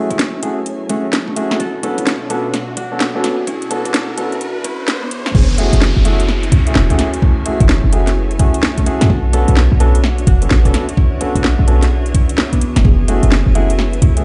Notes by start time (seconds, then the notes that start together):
Already playing: F#3 A3 B3 C#4 E4 F#4 G#4 A4 B4 C#5 E5 G#5, riser
0.10 C#4 E4, kick, closed hi-hat
0.19 snare, closed hi-hat
0.43 A3 C#4 E4 F#4 G#4, closed hi-hat
0.66 closed hi-hat
0.89 A3 C#4 E4 F#4 G#4, kick, closed hi-hat
1.13 snare, closed hi-hat
1.27 A3 C#4, kick
1.36 A3 C#4 E4 F#4 G#4, closed hi-hat
1.51 snare
1.59 B2 D4 F#4 A4, kick, closed hi-hat
1.83 B3 C#4 D4 F#4 A4, closed hi-hat
1.98 kick, closed hi-hat
2.07 snare, closed hi-hat
2.30 B3 C#4 D4 F#4 A4, closed hi-hat
2.35 A5
2.54 snare, closed hi-hat
2.77 D4 F#4, kick, closed hi-hat
2.92 B3 C#4 D4 F#4 A4
3.00 snare, closed hi-hat
3.15 B3 C#4 D4 F#4 A4
3.24 snare, closed hi-hat
3.47 C#4 E4 B4, kick, closed hi-hat
3.62 closed hi-hat
3.71 B3 C#4 D4 F#4 A4, closed hi-hat
3.85 D4 F#4, kick, closed hi-hat
3.94 snare, closed hi-hat
4.17 B3 C#4 D4 F#4 A4, closed hi-hat
4.32 closed hi-hat
4.41 closed hi-hat
4.64 C#4 E4, kick, closed hi-hat
4.88 snare, closed hi-hat
5.02 B3 D4, kick
5.11 closed hi-hat
5.26 snare
5.35 F#1 E4 G#4 A4 C#5, kick, crash, downlifter
5.58 A3 C#4 E4 F#4 G#4, closed hi-hat
5.66 B4
5.72 F#1 E5 G#5, closed hi-hat
5.82 snare
5.96 F#1
6.05 A3 C#4 E4 F#4 G#4, closed hi-hat
6.20 closed hi-hat
6.29 snare
6.43 closed hi-hat
6.52 C#2 C#4 E4, kick, closed hi-hat
6.67 A3 C#4 E4 F#4 G#4, closed hi-hat
6.75 E1, snare
6.90 F#2 A3 C#4 E4 F#4 G#4, kick, closed hi-hat
6.99 snare, closed hi-hat
7.14 closed hi-hat
7.22 A3 C#4, kick
7.46 A3 C#4 E4 F#4 G#4, closed hi-hat
7.60 F#1 C#4 E4, kick, closed hi-hat
7.69 snare
7.84 F#1
7.93 A3 C#4 E4 F#4 G#4, closed hi-hat
8.07 snare, closed hi-hat
8.31 closed hi-hat
8.39 A3 C#4 E4 F#4 G#4, kick, closed hi-hat
8.54 closed hi-hat
8.63 snare
8.77 A3 C#4, kick, closed hi-hat
8.86 A3 C#4 E4 F#4 G#4, closed hi-hat
9.01 F#2, snare, closed hi-hat
9.10 B1 D4 F#4 A4, kick
9.33 B3 C#4 D4 F#4 A4, closed hi-hat
9.48 B1, closed hi-hat
9.57 snare
9.72 B1
9.80 B3 C#4 D4 F#4 A4, closed hi-hat
9.95 closed hi-hat
10.04 snare
10.18 closed hi-hat
10.27 F#1 D4 F#4, kick, closed hi-hat
10.42 B3 C#4 D4 F#4 A4, closed hi-hat
10.51 A1, snare
10.65 F#1 B3 C#4 D4 F#4 A4, kick, closed hi-hat
10.74 snare, closed hi-hat
10.89 closed hi-hat
10.97 C#4 E4 G#4, kick
11.21 B3 C#4 D4 F#4 A4, closed hi-hat
11.35 B1 D4 F#4, kick, closed hi-hat
11.44 snare
11.59 B1
11.67 B3 C#4 D4 F#4 A4, closed hi-hat
11.82 snare, closed hi-hat
12.06 closed hi-hat
12.14 C#4 E4, kick, closed hi-hat
12.29 closed hi-hat
12.38 snare
12.52 B3 D4, kick, closed hi-hat
12.61 closed hi-hat
12.76 F#1, snare, closed hi-hat
12.84 F#1 E4 G#4 A4, kick
13.08 A3 C#4 E4 F#4 G#4, closed hi-hat
13.23 F#1, closed hi-hat
13.32 snare
13.46 F#1
13.55 A3 C#4 E4 F#4 G#4, closed hi-hat
13.70 G#5, closed hi-hat
13.79 snare
13.93 closed hi-hat
14.02 C#2 C#4 E4, kick, closed hi-hat
14.17 A3 C#4 E4 F#4 G#4, closed hi-hat